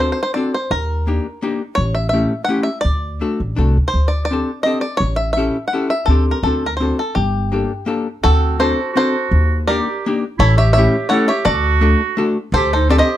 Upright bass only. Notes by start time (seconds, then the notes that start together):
Already playing: D2
0.71 D#2
1.78 A1
2.85 D2
3.40 A1
3.58 C2
3.77 D2
3.94 D2
5.00 A1
6.07 D2
6.43 D2
7.16 G1
8.24 D2
9.31 D#2
10.39 A1
11.45 D2
12.52 D2